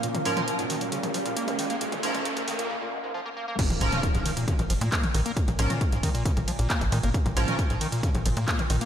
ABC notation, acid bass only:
X:1
M:4/4
L:1/16
Q:1/4=135
K:Bbm
V:1 name="Acid bass" clef=bass
B,, B,, A,, B,, B,, A,, E, B,, D, B,, F, B,, B, B,, E, B, | B,, B,, A,, B,, B,, A,, E, B,, D, B,, C, A,, F, B, B, B, | B,, B,, A,, B,, B,, A,, E, B,, D, B,, F, B,, B, B,, E, B, | B,, B,, A,, B,, z A,, E, B,, D, B,, F, B,, B, B,, E, B, |
B,, B,, A,, B,, B,, A,, E, B,, D, B,, F, B,, B, B,, E, B, |]